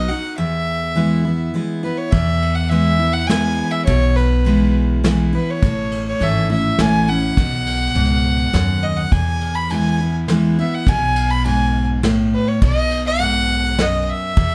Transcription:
0.00 0.10 D#5 medium
0.09 0.38 D#4 soft
0.09 0.36 F#4 medium
0.09 0.37 F#5 medium
0.38 1.49 E2 medium
0.38 1.50 E5 medium
0.95 1.24 E3 soft
0.95 1.24 G#3 soft
0.95 1.24 B3 medium
0.95 1.24 E4 medium
1.25 1.54 B3 soft
1.25 1.53 E4 soft
1.54 1.82 E3 soft
1.54 1.82 G#3 soft
1.54 1.83 B3 medium
1.54 1.82 E4 medium
1.83 2.12 B3 soft
1.83 2.11 E4 medium
1.83 1.99 B4 medium
1.98 2.13 C#5 medium
2.11 3.23 E2 medium
2.11 3.60 E2 medium
2.11 2.56 E5 medium
2.11 kick loud
2.11 ride medium
2.42 ride medium
2.55 2.71 F#5 medium
2.70 2.99 E3 soft
2.70 2.99 G#3 medium
2.70 2.99 B3 medium
2.70 2.98 E4 medium
2.70 3.15 E5 medium
2.70 ride medium
2.99 3.29 B3 soft
2.99 3.28 E4 soft
3.13 3.29 F#5 medium
3.27 3.84 E3 medium
3.27 3.85 G#3 medium
3.27 3.85 B3 medium
3.27 3.85 E4 medium
3.27 3.73 G#5 loud
3.27 snare medium
3.27 ride medium
3.71 3.85 E5 medium
3.85 5.35 B1 medium
3.85 4.98 B2 medium
3.85 4.17 C#5 medium
3.85 kick loud
3.85 ride medium
4.15 4.74 B4 medium
4.15 ride medium
4.45 5.01 E3 medium
4.45 5.01 G#3 medium
4.45 5.02 B3 medium
4.45 5.02 E4 medium
4.45 ride medium
5.04 5.32 E3 medium
5.04 5.32 G#3 medium
5.04 5.33 B3 medium
5.04 5.32 E4 medium
5.04 snare medium
5.04 ride medium
5.33 5.62 B3 soft
5.33 5.61 E4 medium
5.33 5.52 B4 medium
5.50 6.07 C#5 medium
5.62 6.12 A1 medium
5.62 6.73 A2 medium
5.62 kick loud
5.62 ride medium
5.91 ride medium
6.08 6.25 C#5 medium
6.20 6.70 G#1 medium
6.20 6.48 E3 medium
6.20 6.49 A3 medium
6.20 6.49 C#4 medium
6.20 6.49 E4 medium
6.20 6.51 E5 medium
6.20 ride medium
6.50 6.79 C#4 soft
6.50 6.78 E4 soft
6.50 6.82 E5 medium
6.78 7.28 A1 medium
6.78 7.07 E3 medium
6.78 7.07 A3 medium
6.78 7.08 C#4 medium
6.78 7.07 E4 medium
6.78 7.10 G#5 medium
6.78 snare medium
6.78 ride medium
7.08 7.37 C#4 soft
7.08 7.36 E4 medium
7.08 8.84 F#5 loud
7.37 7.87 B1 medium
7.37 8.48 B2 medium
7.37 kick loud
7.37 ride medium
7.67 ride medium
7.95 8.45 C#2 medium
7.95 8.51 G#2 medium
7.95 ride medium
8.53 9.03 D#2 medium
8.53 9.09 F#2 medium
8.53 snare medium
8.53 ride medium
8.83 8.99 D#5 medium
8.97 9.14 F#5 medium
9.12 10.60 E2 medium
9.12 10.23 E2 medium
9.12 9.57 G#5 medium
9.12 kick loud
9.12 ride medium
9.41 ride medium
9.55 9.72 B5 medium
9.70 9.98 E3 soft
9.70 9.99 G#3 soft
9.70 9.99 B3 medium
9.70 9.99 E4 medium
9.70 10.14 G#5 medium
9.70 ride medium
10.01 10.29 B3 soft
10.01 10.28 E4 medium
10.28 10.57 E3 medium
10.28 10.58 G#3 medium
10.28 10.58 B3 medium
10.28 10.57 E4 medium
10.28 snare medium
10.28 ride soft
10.59 10.87 B3 soft
10.59 10.86 E4 medium
10.59 10.76 E5 medium
10.75 10.90 F#5 medium
10.86 12.35 B1 medium
10.86 11.98 B2 medium
10.86 11.32 G#5 medium
10.86 kick loud
10.86 ride medium
11.16 ride medium
11.31 11.45 B5 medium
11.45 12.01 G#2 medium
11.45 11.87 G#5 medium
11.45 ride medium
12.03 12.59 A2 medium
12.03 snare medium
12.03 ride medium
12.34 12.50 B4 medium
12.48 12.62 C#5 medium
12.62 14.10 B1 medium
12.62 13.73 B2 medium
12.62 13.04 D#5 loud
12.62 kick loud
12.62 ride medium
12.91 ride medium
13.07 13.83 F#5 loud
13.20 13.75 G#2 medium
13.20 ride medium
13.78 14.34 F#2 medium
13.78 14.02 D#5 medium
13.78 snare medium
13.78 ride medium
14.02 14.11 D#5 medium
14.10 14.55 E5 medium
14.37 14.55 E2 medium
14.37 kick loud
14.37 ride medium

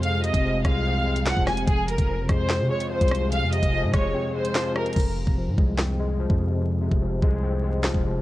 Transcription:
0.00 0.04 F2 medium
0.00 0.32 F2 loud
0.00 1.06 F2 medium
0.00 0.24 C3 medium
0.00 1.64 C3 medium
0.00 0.44 F3 medium
0.00 0.65 G#3 medium
0.00 1.64 G#3 medium
0.00 0.24 C4 medium
0.00 1.64 F4 medium
0.00 1.64 G#4 medium
0.00 0.22 F5 medium
0.00 closed hi-hat medium
0.24 1.26 C3 medium
0.24 0.62 D#5 medium
0.24 closed hi-hat medium
0.34 0.64 F1 loud
0.34 kick medium
0.34 closed hi-hat medium
0.44 1.25 F3 medium
0.65 1.34 C2 loud
0.65 1.05 G#3 loud
0.65 1.23 F5 medium
0.65 kick loud
0.65 cross-stick loud
0.65 closed hi-hat medium
0.86 1.68 C4 medium
1.06 1.67 G#3 medium
1.16 closed hi-hat medium
1.26 1.68 F3 medium
1.26 1.45 F#5 loud
1.26 snare loud
1.26 clap medium
1.26 closed hi-hat medium
1.37 1.46 D#1 loud
1.37 kick medium
1.47 1.67 F1 loud
1.47 1.68 C3 medium
1.47 1.65 G#5 medium
1.47 cross-stick loud
1.47 snare medium
1.57 closed hi-hat medium
1.67 1.97 F1 loud
1.67 2.70 F2 medium
1.67 4.93 C3 medium
1.67 4.93 G#3 medium
1.67 4.93 F4 medium
1.67 4.93 G#4 medium
1.67 1.86 G#4 loud
1.67 kick loud
1.67 closed hi-hat loud
1.88 2.91 C3 medium
1.88 2.27 A#4 medium
1.88 closed hi-hat medium
1.98 2.20 F1 loud
1.98 kick medium
1.98 closed hi-hat medium
2.09 2.90 F3 medium
2.19 2.29 F#1 loud
2.29 2.61 F2 loud
2.29 2.69 G#3 medium
2.29 2.68 C5 medium
2.29 kick loud
2.29 cross-stick loud
2.29 closed hi-hat medium
2.50 3.53 C4 medium
2.50 snare loud
2.50 clap loud
2.60 2.70 C3 loud
2.70 3.73 G#3 medium
2.70 2.88 C#5 medium
2.80 closed hi-hat medium
2.91 3.72 F3 medium
2.91 3.29 C5 medium
3.01 3.44 C2 loud
3.01 kick medium
3.01 closed hi-hat medium
3.08 3.51 C3 medium
3.08 cross-stick loud
3.08 closed hi-hat medium
3.15 closed hi-hat medium
3.32 4.35 F2 medium
3.32 3.50 F5 medium
3.32 closed hi-hat medium
3.42 3.62 F2 loud
3.52 4.55 C3 medium
3.52 3.91 D#5 medium
3.52 closed hi-hat medium
3.63 3.85 F1 loud
3.63 kick medium
3.63 closed hi-hat medium
3.73 4.54 F3 medium
3.83 3.93 G#2 loud
3.94 4.13 F1 loud
3.94 4.33 G#3 loud
3.94 4.32 C#5 medium
3.94 kick loud
3.94 cross-stick loud
3.94 closed hi-hat medium
4.14 4.96 C4 medium
4.35 4.96 G#3 medium
4.35 4.73 C5 medium
4.45 closed hi-hat medium
4.55 4.96 F3 loud
4.55 snare loud
4.55 clap loud
4.55 closed hi-hat medium
4.76 4.96 C3 medium
4.76 4.94 A#4 medium
4.76 cross-stick loud
4.86 closed hi-hat soft
4.93 5.26 F1 loud
4.93 5.99 F2 medium
4.93 kick loud
4.93 closed hi-hat medium
4.93 crash loud
5.00 closed hi-hat medium
5.17 6.19 C3 medium
5.27 5.49 F1 loud
5.27 kick medium
5.37 6.18 F3 medium
5.48 5.57 G#2 loud
5.58 6.27 C2 loud
5.58 5.98 G#3 medium
5.58 kick loud
5.78 6.81 C4 medium
5.78 snare loud
5.78 clap loud
5.99 7.02 G#3 medium
6.19 7.01 F3 medium
6.30 6.89 F2 loud
6.30 kick medium
6.40 6.80 C3 medium
6.61 7.64 F2 medium
6.81 7.84 C3 medium
6.91 7.21 F1 loud
6.91 kick medium
7.02 7.83 F3 medium
7.22 7.91 C2 loud
7.22 7.62 G#3 loud
7.22 kick medium
7.43 8.22 C4 medium
7.63 8.22 G#3 medium
7.84 8.22 F3 loud
7.84 snare loud
7.84 clap loud
7.94 8.04 D#1 loud
7.94 kick medium
8.04 8.22 F1 loud
8.04 8.22 C3 medium

